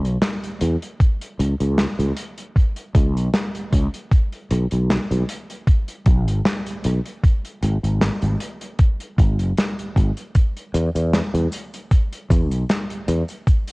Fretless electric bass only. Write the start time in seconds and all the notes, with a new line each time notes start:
0.04 B1
0.61 E2
1.39 C#2
1.60 C#2
1.99 C#2
2.95 C#2
3.16 B1
3.73 C#2
4.51 B1
4.72 B1
5.11 B1
6.06 B1
6.28 G#1
6.85 B1
7.63 G#1
7.83 G#1
8.22 G#1
9.18 G#1
9.39 F#1
9.96 G#1
10.74 E2
10.95 E2
11.34 E2
12.30 E2
12.51 B1
13.08 E2